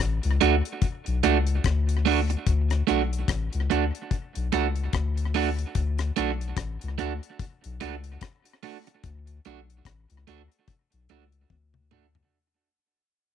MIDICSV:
0, 0, Header, 1, 5, 480
1, 0, Start_track
1, 0, Key_signature, 2, "major"
1, 0, Tempo, 821918
1, 1440, Time_signature, 4, 2, 24, 8
1, 7793, End_track
2, 0, Start_track
2, 0, Title_t, "Clean electric guitar"
2, 0, Program_c, 0, 27
2, 239, Note_on_c, 0, 57, 81
2, 240, Note_on_c, 0, 62, 89
2, 245, Note_on_c, 0, 66, 99
2, 317, Note_off_c, 0, 57, 0
2, 318, Note_off_c, 0, 62, 0
2, 321, Note_off_c, 0, 66, 0
2, 721, Note_on_c, 0, 57, 75
2, 722, Note_on_c, 0, 62, 83
2, 726, Note_on_c, 0, 66, 85
2, 799, Note_off_c, 0, 57, 0
2, 800, Note_off_c, 0, 62, 0
2, 801, Note_off_c, 0, 66, 0
2, 1200, Note_on_c, 0, 57, 90
2, 1205, Note_on_c, 0, 62, 104
2, 1209, Note_on_c, 0, 66, 95
2, 1279, Note_off_c, 0, 57, 0
2, 1281, Note_off_c, 0, 62, 0
2, 1283, Note_off_c, 0, 66, 0
2, 1677, Note_on_c, 0, 57, 84
2, 1682, Note_on_c, 0, 62, 85
2, 1685, Note_on_c, 0, 66, 99
2, 1757, Note_off_c, 0, 57, 0
2, 1760, Note_off_c, 0, 62, 0
2, 1761, Note_off_c, 0, 66, 0
2, 2162, Note_on_c, 0, 57, 76
2, 2166, Note_on_c, 0, 62, 97
2, 2168, Note_on_c, 0, 66, 99
2, 2240, Note_off_c, 0, 57, 0
2, 2242, Note_off_c, 0, 62, 0
2, 2243, Note_off_c, 0, 66, 0
2, 2643, Note_on_c, 0, 57, 85
2, 2646, Note_on_c, 0, 62, 86
2, 2649, Note_on_c, 0, 66, 109
2, 2720, Note_off_c, 0, 57, 0
2, 2722, Note_off_c, 0, 62, 0
2, 2724, Note_off_c, 0, 66, 0
2, 3123, Note_on_c, 0, 57, 90
2, 3127, Note_on_c, 0, 62, 98
2, 3130, Note_on_c, 0, 66, 106
2, 3200, Note_off_c, 0, 57, 0
2, 3203, Note_off_c, 0, 62, 0
2, 3204, Note_off_c, 0, 66, 0
2, 3600, Note_on_c, 0, 57, 89
2, 3603, Note_on_c, 0, 62, 93
2, 3608, Note_on_c, 0, 66, 86
2, 3679, Note_off_c, 0, 57, 0
2, 3681, Note_off_c, 0, 62, 0
2, 3683, Note_off_c, 0, 66, 0
2, 4077, Note_on_c, 0, 57, 88
2, 4081, Note_on_c, 0, 62, 94
2, 4085, Note_on_c, 0, 66, 98
2, 4158, Note_off_c, 0, 57, 0
2, 4160, Note_off_c, 0, 62, 0
2, 4162, Note_off_c, 0, 66, 0
2, 4560, Note_on_c, 0, 57, 89
2, 4565, Note_on_c, 0, 62, 98
2, 4566, Note_on_c, 0, 66, 101
2, 4639, Note_off_c, 0, 57, 0
2, 4641, Note_off_c, 0, 62, 0
2, 4642, Note_off_c, 0, 66, 0
2, 5040, Note_on_c, 0, 57, 87
2, 5044, Note_on_c, 0, 62, 87
2, 5045, Note_on_c, 0, 66, 101
2, 5119, Note_off_c, 0, 57, 0
2, 5121, Note_off_c, 0, 62, 0
2, 5121, Note_off_c, 0, 66, 0
2, 5523, Note_on_c, 0, 57, 84
2, 5526, Note_on_c, 0, 62, 101
2, 5528, Note_on_c, 0, 66, 101
2, 5600, Note_off_c, 0, 57, 0
2, 5601, Note_off_c, 0, 62, 0
2, 5603, Note_off_c, 0, 66, 0
2, 6000, Note_on_c, 0, 57, 87
2, 6005, Note_on_c, 0, 62, 88
2, 6008, Note_on_c, 0, 66, 96
2, 6078, Note_off_c, 0, 57, 0
2, 6081, Note_off_c, 0, 62, 0
2, 6082, Note_off_c, 0, 66, 0
2, 6482, Note_on_c, 0, 57, 84
2, 6484, Note_on_c, 0, 62, 88
2, 6489, Note_on_c, 0, 66, 90
2, 6559, Note_off_c, 0, 57, 0
2, 6560, Note_off_c, 0, 62, 0
2, 6562, Note_off_c, 0, 66, 0
2, 6958, Note_on_c, 0, 57, 89
2, 6963, Note_on_c, 0, 62, 93
2, 6966, Note_on_c, 0, 66, 92
2, 7036, Note_off_c, 0, 57, 0
2, 7039, Note_off_c, 0, 62, 0
2, 7041, Note_off_c, 0, 66, 0
2, 7793, End_track
3, 0, Start_track
3, 0, Title_t, "Sub bass"
3, 0, Program_c, 1, 38
3, 0, Note_on_c, 1, 33, 115
3, 117, Note_off_c, 1, 33, 0
3, 143, Note_on_c, 1, 37, 99
3, 229, Note_off_c, 1, 37, 0
3, 246, Note_on_c, 1, 38, 96
3, 362, Note_off_c, 1, 38, 0
3, 626, Note_on_c, 1, 35, 85
3, 710, Note_off_c, 1, 35, 0
3, 730, Note_on_c, 1, 37, 102
3, 933, Note_off_c, 1, 37, 0
3, 965, Note_on_c, 1, 38, 102
3, 1378, Note_off_c, 1, 38, 0
3, 1444, Note_on_c, 1, 38, 127
3, 1650, Note_off_c, 1, 38, 0
3, 1692, Note_on_c, 1, 35, 88
3, 1895, Note_off_c, 1, 35, 0
3, 1921, Note_on_c, 1, 33, 99
3, 2040, Note_off_c, 1, 33, 0
3, 2069, Note_on_c, 1, 37, 92
3, 2153, Note_off_c, 1, 37, 0
3, 2172, Note_on_c, 1, 38, 90
3, 2286, Note_off_c, 1, 38, 0
3, 2547, Note_on_c, 1, 35, 83
3, 2632, Note_off_c, 1, 35, 0
3, 2650, Note_on_c, 1, 37, 88
3, 2853, Note_off_c, 1, 37, 0
3, 2885, Note_on_c, 1, 38, 100
3, 3298, Note_off_c, 1, 38, 0
3, 3364, Note_on_c, 1, 38, 117
3, 3570, Note_off_c, 1, 38, 0
3, 3611, Note_on_c, 1, 35, 88
3, 3814, Note_off_c, 1, 35, 0
3, 3839, Note_on_c, 1, 33, 102
3, 3959, Note_off_c, 1, 33, 0
3, 3990, Note_on_c, 1, 37, 94
3, 4073, Note_off_c, 1, 37, 0
3, 4091, Note_on_c, 1, 38, 97
3, 4205, Note_off_c, 1, 38, 0
3, 4468, Note_on_c, 1, 35, 88
3, 4552, Note_off_c, 1, 35, 0
3, 4572, Note_on_c, 1, 37, 89
3, 4774, Note_off_c, 1, 37, 0
3, 5283, Note_on_c, 1, 38, 123
3, 5489, Note_off_c, 1, 38, 0
3, 5526, Note_on_c, 1, 35, 87
3, 5731, Note_off_c, 1, 35, 0
3, 5757, Note_on_c, 1, 33, 102
3, 5877, Note_off_c, 1, 33, 0
3, 5904, Note_on_c, 1, 37, 92
3, 5989, Note_off_c, 1, 37, 0
3, 6007, Note_on_c, 1, 38, 90
3, 6122, Note_off_c, 1, 38, 0
3, 6384, Note_on_c, 1, 35, 83
3, 6469, Note_off_c, 1, 35, 0
3, 6484, Note_on_c, 1, 37, 104
3, 6689, Note_off_c, 1, 37, 0
3, 6721, Note_on_c, 1, 38, 93
3, 7134, Note_off_c, 1, 38, 0
3, 7793, End_track
4, 0, Start_track
4, 0, Title_t, "Muted clean electric guitar strokes"
4, 1343, Note_on_c, 9, 29, 49
4, 1401, Note_off_c, 9, 29, 0
4, 5182, Note_on_c, 9, 29, 43
4, 5240, Note_off_c, 9, 29, 0
4, 7101, Note_on_c, 9, 29, 46
4, 7159, Note_off_c, 9, 29, 0
4, 7793, End_track
5, 0, Start_track
5, 0, Title_t, "Drums"
5, 0, Note_on_c, 9, 37, 123
5, 57, Note_off_c, 9, 37, 0
5, 135, Note_on_c, 9, 42, 55
5, 194, Note_off_c, 9, 42, 0
5, 239, Note_on_c, 9, 42, 75
5, 297, Note_off_c, 9, 42, 0
5, 381, Note_on_c, 9, 42, 52
5, 440, Note_off_c, 9, 42, 0
5, 477, Note_on_c, 9, 42, 65
5, 478, Note_on_c, 9, 36, 110
5, 535, Note_off_c, 9, 42, 0
5, 536, Note_off_c, 9, 36, 0
5, 619, Note_on_c, 9, 42, 56
5, 678, Note_off_c, 9, 42, 0
5, 720, Note_on_c, 9, 42, 69
5, 778, Note_off_c, 9, 42, 0
5, 856, Note_on_c, 9, 42, 54
5, 914, Note_off_c, 9, 42, 0
5, 959, Note_on_c, 9, 42, 80
5, 960, Note_on_c, 9, 36, 101
5, 968, Note_on_c, 9, 37, 106
5, 1017, Note_off_c, 9, 42, 0
5, 1018, Note_off_c, 9, 36, 0
5, 1026, Note_off_c, 9, 37, 0
5, 1102, Note_on_c, 9, 42, 59
5, 1160, Note_off_c, 9, 42, 0
5, 1203, Note_on_c, 9, 46, 83
5, 1261, Note_off_c, 9, 46, 0
5, 1344, Note_on_c, 9, 42, 55
5, 1402, Note_off_c, 9, 42, 0
5, 1440, Note_on_c, 9, 36, 118
5, 1440, Note_on_c, 9, 42, 84
5, 1498, Note_off_c, 9, 42, 0
5, 1499, Note_off_c, 9, 36, 0
5, 1579, Note_on_c, 9, 42, 52
5, 1582, Note_on_c, 9, 37, 75
5, 1637, Note_off_c, 9, 42, 0
5, 1641, Note_off_c, 9, 37, 0
5, 1682, Note_on_c, 9, 42, 67
5, 1741, Note_off_c, 9, 42, 0
5, 1827, Note_on_c, 9, 42, 57
5, 1886, Note_off_c, 9, 42, 0
5, 1916, Note_on_c, 9, 36, 124
5, 1917, Note_on_c, 9, 42, 103
5, 1923, Note_on_c, 9, 37, 113
5, 1975, Note_off_c, 9, 36, 0
5, 1976, Note_off_c, 9, 42, 0
5, 1981, Note_off_c, 9, 37, 0
5, 2059, Note_on_c, 9, 42, 52
5, 2118, Note_off_c, 9, 42, 0
5, 2165, Note_on_c, 9, 42, 77
5, 2224, Note_off_c, 9, 42, 0
5, 2306, Note_on_c, 9, 42, 49
5, 2364, Note_off_c, 9, 42, 0
5, 2400, Note_on_c, 9, 36, 109
5, 2401, Note_on_c, 9, 42, 68
5, 2459, Note_off_c, 9, 36, 0
5, 2459, Note_off_c, 9, 42, 0
5, 2543, Note_on_c, 9, 42, 58
5, 2601, Note_off_c, 9, 42, 0
5, 2642, Note_on_c, 9, 42, 72
5, 2643, Note_on_c, 9, 37, 67
5, 2700, Note_off_c, 9, 42, 0
5, 2702, Note_off_c, 9, 37, 0
5, 2777, Note_on_c, 9, 42, 51
5, 2835, Note_off_c, 9, 42, 0
5, 2879, Note_on_c, 9, 42, 85
5, 2881, Note_on_c, 9, 36, 107
5, 2888, Note_on_c, 9, 37, 104
5, 2937, Note_off_c, 9, 42, 0
5, 2939, Note_off_c, 9, 36, 0
5, 2946, Note_off_c, 9, 37, 0
5, 3021, Note_on_c, 9, 42, 57
5, 3080, Note_off_c, 9, 42, 0
5, 3120, Note_on_c, 9, 46, 84
5, 3179, Note_off_c, 9, 46, 0
5, 3262, Note_on_c, 9, 42, 58
5, 3321, Note_off_c, 9, 42, 0
5, 3358, Note_on_c, 9, 42, 86
5, 3359, Note_on_c, 9, 36, 116
5, 3416, Note_off_c, 9, 42, 0
5, 3418, Note_off_c, 9, 36, 0
5, 3495, Note_on_c, 9, 42, 50
5, 3499, Note_on_c, 9, 37, 75
5, 3554, Note_off_c, 9, 42, 0
5, 3557, Note_off_c, 9, 37, 0
5, 3600, Note_on_c, 9, 42, 67
5, 3658, Note_off_c, 9, 42, 0
5, 3745, Note_on_c, 9, 42, 53
5, 3803, Note_off_c, 9, 42, 0
5, 3835, Note_on_c, 9, 36, 127
5, 3835, Note_on_c, 9, 42, 104
5, 3840, Note_on_c, 9, 37, 111
5, 3893, Note_off_c, 9, 36, 0
5, 3893, Note_off_c, 9, 42, 0
5, 3899, Note_off_c, 9, 37, 0
5, 3979, Note_on_c, 9, 42, 55
5, 4037, Note_off_c, 9, 42, 0
5, 4081, Note_on_c, 9, 42, 76
5, 4139, Note_off_c, 9, 42, 0
5, 4222, Note_on_c, 9, 42, 51
5, 4281, Note_off_c, 9, 42, 0
5, 4318, Note_on_c, 9, 36, 109
5, 4319, Note_on_c, 9, 42, 67
5, 4377, Note_off_c, 9, 36, 0
5, 4377, Note_off_c, 9, 42, 0
5, 4461, Note_on_c, 9, 42, 57
5, 4519, Note_off_c, 9, 42, 0
5, 4559, Note_on_c, 9, 42, 77
5, 4561, Note_on_c, 9, 37, 69
5, 4617, Note_off_c, 9, 42, 0
5, 4619, Note_off_c, 9, 37, 0
5, 4694, Note_on_c, 9, 42, 53
5, 4752, Note_off_c, 9, 42, 0
5, 4795, Note_on_c, 9, 42, 87
5, 4798, Note_on_c, 9, 36, 110
5, 4804, Note_on_c, 9, 37, 108
5, 4853, Note_off_c, 9, 42, 0
5, 4857, Note_off_c, 9, 36, 0
5, 4862, Note_off_c, 9, 37, 0
5, 4937, Note_on_c, 9, 42, 59
5, 4995, Note_off_c, 9, 42, 0
5, 5039, Note_on_c, 9, 46, 80
5, 5097, Note_off_c, 9, 46, 0
5, 5180, Note_on_c, 9, 42, 57
5, 5239, Note_off_c, 9, 42, 0
5, 5277, Note_on_c, 9, 42, 92
5, 5278, Note_on_c, 9, 36, 119
5, 5335, Note_off_c, 9, 42, 0
5, 5336, Note_off_c, 9, 36, 0
5, 5414, Note_on_c, 9, 42, 54
5, 5473, Note_off_c, 9, 42, 0
5, 5518, Note_on_c, 9, 42, 70
5, 5576, Note_off_c, 9, 42, 0
5, 5664, Note_on_c, 9, 42, 58
5, 5722, Note_off_c, 9, 42, 0
5, 5754, Note_on_c, 9, 36, 127
5, 5755, Note_on_c, 9, 42, 94
5, 5761, Note_on_c, 9, 37, 121
5, 5812, Note_off_c, 9, 36, 0
5, 5814, Note_off_c, 9, 42, 0
5, 5820, Note_off_c, 9, 37, 0
5, 5897, Note_on_c, 9, 42, 54
5, 5955, Note_off_c, 9, 42, 0
5, 6000, Note_on_c, 9, 42, 80
5, 6059, Note_off_c, 9, 42, 0
5, 6141, Note_on_c, 9, 42, 49
5, 6199, Note_off_c, 9, 42, 0
5, 6235, Note_on_c, 9, 42, 68
5, 6236, Note_on_c, 9, 36, 112
5, 6293, Note_off_c, 9, 42, 0
5, 6294, Note_off_c, 9, 36, 0
5, 6376, Note_on_c, 9, 42, 54
5, 6435, Note_off_c, 9, 42, 0
5, 6477, Note_on_c, 9, 42, 71
5, 6535, Note_off_c, 9, 42, 0
5, 6613, Note_on_c, 9, 42, 53
5, 6671, Note_off_c, 9, 42, 0
5, 6716, Note_on_c, 9, 36, 101
5, 6717, Note_on_c, 9, 48, 65
5, 6775, Note_off_c, 9, 36, 0
5, 6776, Note_off_c, 9, 48, 0
5, 6856, Note_on_c, 9, 47, 68
5, 6914, Note_off_c, 9, 47, 0
5, 6956, Note_on_c, 9, 45, 91
5, 7015, Note_off_c, 9, 45, 0
5, 7096, Note_on_c, 9, 43, 102
5, 7154, Note_off_c, 9, 43, 0
5, 7793, End_track
0, 0, End_of_file